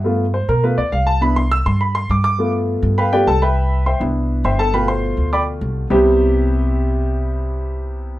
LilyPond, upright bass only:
\new Staff \with { instrumentName = "Upright bass" } { \clef bass \time 4/4 \key c \major \tempo 4 = 205 g,4. b,4 d,8 c,4~ | c,4. g,4. g,4~ | g,4. g,4. c,4~ | c,4. c,4. g,,4~ |
g,,4. d,4. c,4 | c,1~ | c,1 | }